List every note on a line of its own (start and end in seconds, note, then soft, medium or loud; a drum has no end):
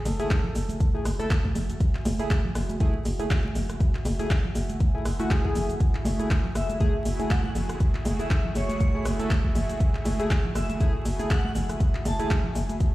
0.00 12.95 F#4 medium
0.00 12.95 E5 medium
0.00 12.95 G#5 medium
0.05 0.22 F#1 loud
0.05 1.05 A4 medium
0.05 open hi-hat loud
0.05 high conga medium
0.05 cabasa medium
0.20 0.37 A3 medium
0.20 0.37 E4 medium
0.20 0.37 G#4 medium
0.20 closed hi-hat medium
0.20 cabasa soft
0.30 kick loud
0.30 clap loud
0.30 closed hi-hat medium
0.30 cabasa soft
0.44 low conga medium
0.55 0.72 F#1 medium
0.55 open hi-hat loud
0.55 cabasa medium
0.69 closed hi-hat medium
0.69 high conga medium
0.69 cabasa soft
0.80 kick loud
0.80 closed hi-hat medium
0.80 cabasa soft
0.94 1.04 A3 medium
0.94 1.04 E4 medium
0.94 1.04 G#4 medium
1.05 1.22 F#1 medium
1.05 cross-stick medium
1.05 open hi-hat loud
1.05 cabasa medium
1.19 1.29 A3 medium
1.19 1.29 E4 medium
1.19 1.29 A4 loud
1.19 closed hi-hat medium
1.19 cabasa soft
1.30 kick loud
1.30 clap loud
1.30 closed hi-hat medium
1.30 cabasa soft
1.44 kick medium
1.44 high conga medium
1.55 1.72 F#1 medium
1.55 open hi-hat loud
1.55 low conga medium
1.55 cabasa medium
1.70 closed hi-hat medium
1.70 cabasa soft
1.80 kick loud
1.80 closed hi-hat medium
1.80 cabasa soft
1.95 clap soft
2.05 2.22 F#1 loud
2.05 open hi-hat loud
2.05 high conga loud
2.05 cabasa medium
2.19 2.37 A3 medium
2.19 2.37 E4 medium
2.19 2.37 G#4 loud
2.19 closed hi-hat medium
2.19 cabasa soft
2.30 kick loud
2.30 clap loud
2.30 closed hi-hat medium
2.30 cabasa soft
2.45 low conga medium
2.55 2.72 F#1 medium
2.55 cross-stick medium
2.55 open hi-hat loud
2.55 cabasa medium
2.69 closed hi-hat medium
2.69 high conga medium
2.69 cabasa soft
2.80 2.93 A3 loud
2.80 2.93 E4 medium
2.80 2.93 G#4 loud
2.80 kick loud
2.80 closed hi-hat medium
2.80 cabasa soft
3.05 3.22 F#1 medium
3.05 open hi-hat loud
3.05 cabasa medium
3.19 3.37 A3 medium
3.19 3.37 E4 medium
3.19 3.37 G#4 medium
3.19 closed hi-hat medium
3.19 cabasa soft
3.30 kick loud
3.30 clap loud
3.30 closed hi-hat medium
3.30 cabasa soft
3.44 high conga medium
3.55 3.72 F#1 medium
3.55 open hi-hat loud
3.55 low conga medium
3.55 cabasa medium
3.69 cross-stick medium
3.69 closed hi-hat medium
3.69 cabasa soft
3.80 kick loud
3.80 closed hi-hat medium
3.80 cabasa soft
3.95 clap soft
4.05 4.22 F#1 loud
4.05 open hi-hat loud
4.05 high conga medium
4.05 cabasa medium
4.19 4.37 A3 medium
4.19 4.37 E4 medium
4.19 4.37 G#4 loud
4.19 closed hi-hat soft
4.19 cabasa soft
4.30 kick loud
4.30 clap loud
4.30 closed hi-hat medium
4.30 cabasa soft
4.44 low conga medium
4.55 4.72 F#1 medium
4.55 open hi-hat loud
4.55 cabasa medium
4.70 closed hi-hat medium
4.70 high conga medium
4.70 cabasa soft
4.80 kick loud
4.80 closed hi-hat medium
4.80 cabasa soft
4.95 5.04 A3 medium
4.95 5.04 E4 medium
4.95 5.04 G#4 medium
5.05 5.22 F#1 medium
5.05 cross-stick medium
5.05 open hi-hat loud
5.05 cabasa medium
5.19 5.37 A3 medium
5.19 5.37 E4 medium
5.19 5.37 F#4 loud
5.19 closed hi-hat medium
5.19 cabasa soft
5.30 5.77 G#4 loud
5.30 kick loud
5.30 clap loud
5.30 closed hi-hat medium
5.30 cabasa soft
5.44 6.16 A3 medium
5.44 6.16 E4 medium
5.44 6.16 G#4 medium
5.44 kick medium
5.44 high conga loud
5.55 5.72 F#1 medium
5.55 open hi-hat loud
5.55 low conga medium
5.55 cabasa medium
5.70 closed hi-hat medium
5.70 cabasa soft
5.80 12.95 A3 medium
5.80 12.95 E4 medium
5.80 12.95 F#4 medium
5.80 12.95 G#4 medium
5.80 kick loud
5.80 closed hi-hat medium
5.80 cabasa soft
5.95 clap soft
6.05 6.22 F#1 loud
6.05 open hi-hat loud
6.05 high conga medium
6.05 cabasa medium
6.20 6.37 A3 medium
6.20 6.37 E4 medium
6.20 6.37 G#4 medium
6.20 closed hi-hat soft
6.20 cabasa soft
6.30 kick loud
6.30 clap loud
6.30 closed hi-hat medium
6.30 cabasa soft
6.45 low conga medium
6.55 6.72 F#1 medium
6.55 6.74 E5 loud
6.55 cross-stick medium
6.55 open hi-hat loud
6.55 cabasa medium
6.69 closed hi-hat medium
6.69 high conga medium
6.69 cabasa soft
6.80 6.93 A3 loud
6.80 6.93 E4 medium
6.80 6.93 G#4 loud
6.80 kick loud
6.80 closed hi-hat medium
6.80 cabasa soft
7.05 7.22 F#1 medium
7.05 open hi-hat loud
7.05 cabasa medium
7.19 7.37 A3 medium
7.19 7.37 E4 medium
7.19 7.37 G#4 medium
7.19 closed hi-hat medium
7.19 cabasa soft
7.30 7.49 F#5 loud
7.30 kick loud
7.30 clap loud
7.30 closed hi-hat medium
7.30 cabasa soft
7.44 high conga medium
7.55 7.72 F#1 medium
7.55 open hi-hat medium
7.55 low conga medium
7.55 cabasa medium
7.69 cross-stick medium
7.69 closed hi-hat medium
7.69 cabasa soft
7.80 kick loud
7.80 closed hi-hat medium
7.80 cabasa soft
7.95 clap soft
8.05 8.22 F#1 loud
8.05 open hi-hat loud
8.05 high conga medium
8.05 cabasa medium
8.19 8.37 A3 medium
8.19 8.37 E4 medium
8.19 8.37 G#4 medium
8.19 8.26 E5 medium
8.19 closed hi-hat medium
8.19 cabasa soft
8.30 8.39 E5 medium
8.30 kick loud
8.30 clap loud
8.30 closed hi-hat medium
8.30 cabasa soft
8.44 low conga medium
8.55 8.72 F#1 medium
8.55 9.05 C#5 loud
8.55 open hi-hat medium
8.55 cabasa medium
8.69 closed hi-hat medium
8.69 high conga medium
8.69 cabasa soft
8.80 kick loud
8.80 closed hi-hat medium
8.80 cabasa soft
8.94 9.04 A3 medium
8.94 9.04 E4 medium
8.94 9.04 G#4 medium
9.05 9.22 F#1 medium
9.05 cross-stick medium
9.05 open hi-hat loud
9.05 cabasa medium
9.19 9.29 A3 medium
9.19 9.29 E4 medium
9.19 9.29 A4 loud
9.19 closed hi-hat medium
9.19 cabasa soft
9.30 kick loud
9.30 clap loud
9.30 closed hi-hat medium
9.30 cabasa soft
9.44 kick medium
9.44 high conga medium
9.55 9.72 F#1 medium
9.55 open hi-hat medium
9.55 low conga medium
9.55 cabasa medium
9.70 closed hi-hat medium
9.70 cabasa soft
9.80 kick loud
9.80 closed hi-hat medium
9.80 cabasa soft
9.95 clap soft
10.05 10.22 F#1 loud
10.05 open hi-hat loud
10.05 high conga medium
10.05 cabasa medium
10.19 10.37 A3 medium
10.19 10.37 E4 medium
10.19 10.37 G#4 loud
10.19 closed hi-hat medium
10.19 cabasa soft
10.30 kick loud
10.30 clap loud
10.30 closed hi-hat medium
10.30 cabasa soft
10.45 low conga medium
10.55 10.72 F#1 medium
10.55 10.74 E5 medium
10.55 cross-stick medium
10.55 open hi-hat medium
10.55 cabasa medium
10.69 closed hi-hat medium
10.69 high conga medium
10.69 cabasa soft
10.80 10.93 A3 loud
10.80 10.93 E4 medium
10.80 10.93 G#4 loud
10.80 kick loud
10.80 closed hi-hat medium
10.80 cabasa soft
11.05 11.22 F#1 medium
11.05 open hi-hat loud
11.05 cabasa medium
11.19 11.37 A3 medium
11.19 11.37 E4 medium
11.19 11.37 G#4 medium
11.19 closed hi-hat medium
11.19 cabasa soft
11.30 11.49 F#5 loud
11.30 kick loud
11.30 clap loud
11.30 closed hi-hat medium
11.30 cabasa soft
11.45 high conga medium
11.55 11.72 F#1 medium
11.55 open hi-hat medium
11.55 low conga medium
11.55 cabasa medium
11.70 cross-stick medium
11.70 closed hi-hat medium
11.70 cabasa soft
11.80 kick loud
11.80 closed hi-hat medium
11.80 cabasa soft
11.95 clap soft
12.05 12.22 F#1 loud
12.05 12.14 A5 medium
12.05 open hi-hat loud
12.05 high conga medium
12.05 cabasa medium
12.19 12.37 A3 medium
12.19 12.37 E4 medium
12.19 12.37 G#4 medium
12.19 12.26 A5 medium
12.19 closed hi-hat medium
12.19 cabasa soft
12.30 kick loud
12.30 clap loud
12.30 closed hi-hat medium
12.30 cabasa soft
12.44 low conga medium
12.55 12.72 F#1 medium
12.55 open hi-hat loud
12.55 cabasa medium
12.69 closed hi-hat medium
12.69 high conga medium
12.69 cabasa soft
12.80 kick loud
12.80 closed hi-hat medium
12.80 cabasa soft